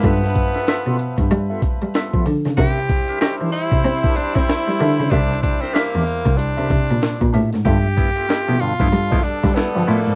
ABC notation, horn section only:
X:1
M:4/4
L:1/8
Q:"Swing 16ths" 1/4=94
K:Gmix
V:1 name="Horn section"
[F,Be]6- [F,Be] z | [G,Ec]8- | [G,Ec]6- [G,Ec] z | z4 [B,,Ad]4 |]